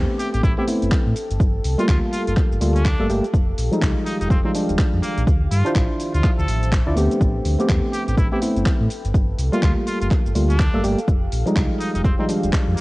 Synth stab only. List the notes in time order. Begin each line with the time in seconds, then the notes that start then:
Already playing: A3 B3 C4 G4
0.58 A3 B3 C4 G4
0.67 A3 B3 C4 E4
1.78 G3 A3 A#3 F4
2.61 G3 A3 A#3 F4
2.99 G3 A3 A#3 A4
3.09 G3 A3 A#3 G4
3.72 F3 G3 G#3 D#4
4.45 F3 G3 G#3 D#4
4.54 F3 G3 G#3 D4
5.65 D4 E4 F4 C5
6.86 D4 E4 F4 D5
6.96 A3 B3 C4 G4
7.59 A3 B3 C4 G4
8.32 A3 B3 C4 G4
8.41 A3 B3 C4 E4
9.52 G3 A3 A#3 F4
10.35 G3 A3 A#3 F4
10.74 G3 A3 A#3 A4
10.83 G3 A3 A#3 G4
11.46 F3 G3 G#3 D#4
12.19 F3 G3 G#3 D#4
12.28 F3 G3 G#3 D4